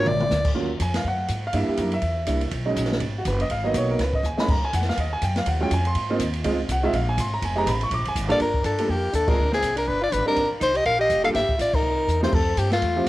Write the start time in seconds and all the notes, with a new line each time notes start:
0.06 A#1 D5, mid tom
0.20 mid tom
0.31 D2, snare, hi-hat pedal
0.45 kick, crash
0.55 D#2 F#3 A#3 C#4 F4
0.80 F2 G#5, kick, hi-hat pedal, ride
0.94 F5, snare, ride
1.04 F#2 F#5, kick
1.28 G#2, kick, hi-hat pedal, ride
1.47 F5
1.53 G2 G3 A#3 D4 E4 E5, kick, ride
1.68 G4, muted upright bass stroke
1.77 F#2 A#4, kick, hi-hat pedal, ride
1.92 E5, ride
2.02 E2, kick, ride
2.27 C2 G3 A#3 D4 E4, kick, hi-hat pedal, ride
2.41 ride
2.51 B1, kick, ride
2.65 F#3 G#3 C#4 D#4
2.76 A#1, kick, hi-hat pedal, ride
2.85 snare
2.92 snare
3.00 G#1, kick, ride
3.18 F#4
3.25 F#1 B4, kick, hi-hat pedal, ride
3.40 D#5, ride
3.49 G#1 F5, kick, ride
3.64 F#3 A#3 B3 D#4 D#5
3.74 B1 C#5, kick, hi-hat pedal, ride
3.91 A#4
3.99 C#2 B4, kick, snare, ride
4.13 D#5, kick
4.23 D#2 G#5, hi-hat pedal
4.37 G#3 A#3 C#4 D#4 B5, muted upright bass stroke, snare
4.48 F#2 A#5, kick, crash
4.63 G#5, muted upright bass stroke
4.73 F2 F#5, kick, hi-hat pedal, ride
4.82 snare
4.89 F5, snare
4.97 D#2 D#5, kick, ride
5.13 G#5
5.21 F#2 G5, kick, hi-hat pedal, ride
5.36 F5, snare, ride
5.46 D#2 F#5, kick, ride
5.61 F#3 G#3 C#4 F4 G5
5.71 F2 G#5, kick, hi-hat pedal, ride
5.85 C6, ride
5.95 G#2, kick, ride
6.10 A#3 C4 D#4 F4
6.19 D#2, kick, hi-hat pedal, ride
6.33 ride
6.44 C#2 G#3 C4 D#4 F4, kick, ride
6.69 C2 F#5, kick, hi-hat pedal, ride
6.83 G#3 C4 D#4 F4 E5
6.93 A#1 F5, kick, ride
7.09 G#5
7.18 G#1 C6, kick, hi-hat pedal, ride
7.34 A#5
7.42 F1 G#5, kick, ride
7.56 G#3 B3 D#4 G4 A#5
7.66 A1 B5, kick, hi-hat pedal, ride
7.81 C#6, ride
7.91 A#1 D6, kick, ride
7.99 G#1
8.05 F1 G#5, ride
8.15 G#1, kick, hi-hat pedal, ride
8.28 G2 A#3 D4 F4 A4 D5, ride
8.39 G1 D4 A#4, kick, ride
8.54 kick
8.63 G2 D4 A4, kick, hi-hat pedal, ride
8.78 G3 A#3 D4 F4 A4, ride
8.88 F2 A#3 G4, kick
9.12 D#2 D4 A4, kick, hi-hat pedal, ride
9.27 G#3 C4 D4 F4 G#4 A#4, kick, crash
9.39 D2
9.51 C4 G#4, snare
9.62 C2, kick, hi-hat pedal, ride
9.76 D4 A#4, ride
9.87 G1 D4 B4, kick
10.01 F4 D5
10.10 G#1 D4 B4, kick, hi-hat pedal, ride
10.26 G3 C4 D4 D#4 A#4, muted upright bass stroke
10.36 G1, kick, ride
10.51 muted upright bass stroke
10.60 C2 D#4 C5, kick, hi-hat pedal, ride
10.75 G4 D#5, ride
10.85 A#1 A#4 F5, kick, ride
10.99 G4 D#5
11.10 F1, kick, hi-hat pedal, ride
11.23 G3 A#3 D4 F4 A4 F5, ride
11.33 G1 G4 E5, kick, snare, ride
11.49 muted upright bass stroke, kick
11.58 A1 F4 D5, kick, hi-hat pedal, ride
11.73 D#4 A#4, kick, crash
11.83 C2
12.08 E2, hi-hat pedal
12.21 F3 A3 C4 D#4 E4 G4 C5, snare
12.31 F2 C4 A4, kick, crash
12.56 G2 C4 G4, kick, hi-hat pedal, ride
12.70 A3 F4, snare, ride
12.82 E2, kick, ride
12.96 F3 A3 C4 E4 G4